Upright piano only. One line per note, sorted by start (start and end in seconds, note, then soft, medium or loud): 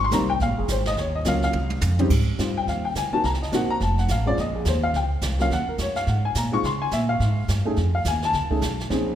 0.04 0.13 C6 loud
0.12 0.27 G3 medium
0.12 0.27 A#3 medium
0.12 0.28 C4 medium
0.12 0.28 D#4 medium
0.12 0.29 A#5 loud
0.30 0.40 G5 loud
0.42 0.58 F5 loud
0.58 0.69 G#4 medium
0.71 0.87 C5 medium
0.87 0.98 D#5 loud
0.99 1.15 C#5 medium
1.15 1.26 D#5 medium
1.25 1.54 F#3 medium
1.25 1.54 A#3 medium
1.25 1.54 C#4 medium
1.25 1.54 F4 medium
1.25 1.42 F5 loud
1.44 1.70 F5 loud
1.99 2.09 C#3 medium
1.99 2.09 G3 medium
1.99 2.10 C4 medium
1.99 2.10 D#4 medium
1.99 2.10 G4 loud
2.38 2.80 G3 medium
2.38 2.81 C4 medium
2.38 2.81 D#4 medium
2.38 2.81 F4 medium
2.57 2.68 G5 loud
2.69 2.85 F5 medium
2.85 2.96 G5 medium
2.97 3.13 G#5 medium
3.12 3.23 A#3 medium
3.12 3.23 C4 medium
3.12 3.23 D#4 medium
3.12 3.23 F#4 medium
3.12 3.24 A5 loud
3.25 3.41 A#5 loud
3.42 3.53 D#5 medium
3.53 3.81 A#3 medium
3.53 3.81 C4 medium
3.53 3.81 D#4 medium
3.53 3.81 F#4 medium
3.53 3.70 F#5 medium
3.70 3.81 A#5 loud
3.83 3.98 A5 medium
3.99 4.09 F#5 medium
4.11 4.27 F5 medium
4.25 4.36 G#3 medium
4.25 4.36 C4 medium
4.25 4.36 C#4 medium
4.25 4.37 F4 medium
4.25 4.38 D5 loud
4.40 4.55 D#5 medium
4.55 4.66 G#4 medium
4.68 4.84 C5 medium
4.83 4.94 F5 loud
4.96 5.06 G5 medium
5.39 5.49 F#3 medium
5.39 5.49 A#3 medium
5.39 5.50 C#4 medium
5.39 5.50 F4 medium
5.39 5.51 F5 loud
5.53 5.68 F#5 loud
5.69 5.79 A#4 medium
5.81 5.96 C#5 loud
5.96 6.07 F5 loud
6.09 6.24 F#5 medium
6.25 6.36 G#5 medium
6.38 6.53 A#5 medium
6.52 6.62 G#3 medium
6.52 6.63 C4 medium
6.52 6.63 D#4 medium
6.52 6.63 F4 medium
6.52 6.64 C#6 loud
6.65 6.81 C6 medium
6.82 6.92 G#5 loud
6.93 7.09 E5 loud
7.09 7.46 F5 loud
7.65 7.76 A3 medium
7.65 7.76 C#4 medium
7.65 7.76 D#4 medium
7.65 7.76 G#4 medium
7.95 8.05 F5 loud
8.08 8.23 G#5 loud
8.25 8.50 A5 loud
8.51 8.61 A3 medium
8.51 8.61 C#4 medium
8.51 8.61 D#4 medium
8.51 8.61 G#4 medium
8.90 9.15 C4 medium
8.90 9.15 C#4 medium
8.90 9.15 D#4 medium
8.90 9.15 G#4 medium